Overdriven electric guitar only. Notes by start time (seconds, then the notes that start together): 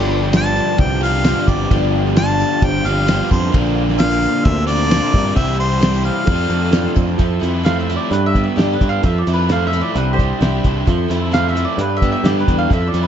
Already playing: G2 D3 F3 G3 B3 G4
1.01 G2 D3 F3 G3 B3 G4
1.25 G2 D3 F3 G3 B3 G4
1.70 G2 D3 F3 G3 B3 G4
2.85 G2 D3 F3 G3 B3 G4
3.07 G2 D3 F3 G3 B3 G4
3.52 A#2 D3 A#3 D4 F4
4.67 D3 A#3 D4 F4
4.71 A#2
4.90 A#2 D3 A#3 D4 F4
5.35 C3 E3 G3 C4
5.39 E4
6.27 F2 C3 F3 A3 C4 F4
7.18 F3
7.42 E4
7.66 A3
7.90 E4
8.12 G2
8.35 B3
8.58 G4
8.81 D4
9.05 F3
9.29 E4
9.50 A3
9.74 E4
9.97 C3
10.20 G3
10.42 E4
10.65 D4
10.87 F3
11.10 E4
11.32 A3
11.56 E4
11.79 G2
12.03 B3
12.26 G4
12.48 D4
12.71 F3
12.94 E4